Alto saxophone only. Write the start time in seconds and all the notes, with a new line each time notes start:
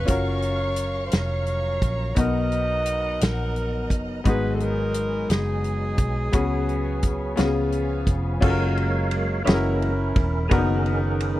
Already playing: B4
0.10 C#5
1.06 C5
1.17 C#5
2.19 D#5
3.23 A#4
4.28 B4
4.55 A4
4.62 A#4
5.30 G#4